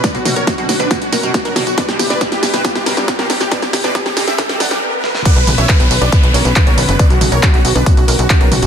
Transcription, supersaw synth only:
\new Staff \with { instrumentName = "Supersaw synth" } { \time 4/4 \key b \minor \tempo 4 = 138 <b' d''>16 fis'16 fis'16 <ais' cis''>16 fis'16 fis'16 fis'16 <d' b'>16 fis'16 fis'16 <fis' ais'>16 fis'16 fis'16 <fis' ais'>16 fis'16 fis'16 | <b' d''>16 g'16 g'16 <b' d''>16 g'16 g'16 g'16 <g' b'>16 g'16 g'16 <g' ais'>16 g'16 g'16 <g' ais'>16 g'16 g'16 | <b' d''>16 g'16 g'16 <b' d''>16 g'16 g'16 g'16 <g' e''>16 g'16 g'16 <d'' fis''>16 g'16 r4 | <d'' fis''>16 b'16 b'16 <cis'' e''>16 b'16 b'16 b'16 <b' d''>16 b'16 b'16 <ais' cis''>16 b'16 b'16 <ais' cis''>16 b'16 b'16 |
<b' d''>16 fis'16 fis'16 <ais' cis''>16 fis'16 fis'16 fis'16 <d' b'>16 fis'16 fis'16 <fis' ais'>16 fis'16 fis'16 <fis' ais'>16 fis'16 fis'16 | }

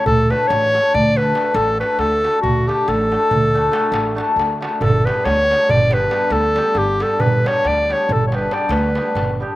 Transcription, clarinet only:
\new Staff \with { instrumentName = "Clarinet" } { \time 11/8 \key d \major \tempo 4 = 138 a'8 b'8 cis''4 d''8 b'4 a'8 b'8 a'4 | fis'8 g'8 a'1 r8 | a'8 b'8 cis''4 d''8 b'4 a'4 g'8 a'8 | b'8 cis''8 d''8 cis''8 a'16. cis''32 b'8 d''8 b'4. r8 | }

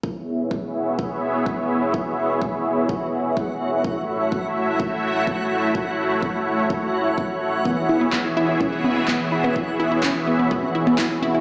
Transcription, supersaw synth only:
\new Staff \with { instrumentName = "Supersaw synth" } { \time 4/4 \key cis \minor \tempo 4 = 126 << { <b e' gis' e''>1~ | <b e' gis' e''>1 | <a e' fis' e''>1~ | <a e' fis' e''>1 |
<e b e' gis' e''>1~ | <e b e' gis' e''>1 | } \\ { cis''1~ | cis''1 | cis''1~ | cis''1~ |
cis''1~ | cis''1 | } >> }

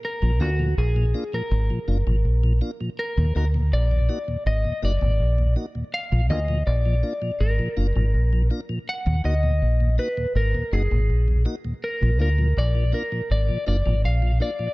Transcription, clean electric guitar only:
\new Staff \with { instrumentName = "Clean electric guitar" } { \time 4/4 \key ees \minor \tempo 4 = 81 bes'8 ges'8 aes'8. bes'4.~ bes'16 r8 | bes'8 bes'8 d''4 ees''8 d''4 r8 | f''8 ees''8 d''4 bes'4. r8 | ges''8 ees''4 ces''8 bes'8 aes'4 r8 |
bes'8 bes'8 d''8 bes'8 d''8 d''8 f''8 d''8 | }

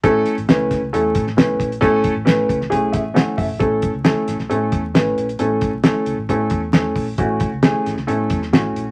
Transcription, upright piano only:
\new Staff \with { instrumentName = "Upright piano" } { \time 4/4 \key a \major \tempo 4 = 134 <a cis' e' a'>8 r8 <a cis' e' b'>8 r8 <a cis' e' a'>8 r8 <a cis' e' b'>8 r8 | <a cis' e' a'>8 r8 <a cis' e' b'>8 r8 <a cis' e' gis'>8 e''8 <a cis' e' a' fis''>8 e''8 | <a cis' e' a'>8 r8 <a cis' e' a'>8 r8 <a cis' e' a'>8 r8 <a cis' e' b'>8 r8 | <a cis' e' a'>8 r8 <a cis' e' a'>8 r8 <a cis' e' a'>8 r8 <a cis' e' a'>8 r8 |
<a cis' e' fis'>8 r8 <a cis' e' gis'>8 r8 <a cis' e' a'>8 r8 <a cis' e' fis'>8 r8 | }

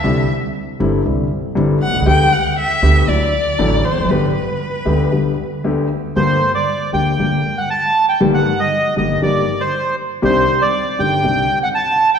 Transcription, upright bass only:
\new Staff \with { instrumentName = "Upright bass" } { \clef bass \time 4/4 \key g \major \tempo 4 = 118 c,16. r4 r32 g,,16. r32 c,16. r8 r32 g,,16. r16 b,,32 c,32 cis,32 | d,16. r4 r32 d,16. r32 d,16. r8 r32 a,,16. r16 e,,32 f,,32 fis,,32 | g,,16. r4 r32 d,16. r2 r32 | \key g \minor g,,16. r4 r32 d,16. r32 g,,16. r4. r32 |
g,,16. r4 r32 g,,16. r32 g,,16. r4. r32 | c,16. r4 r32 g,,16. r32 c,16. r4. r32 | }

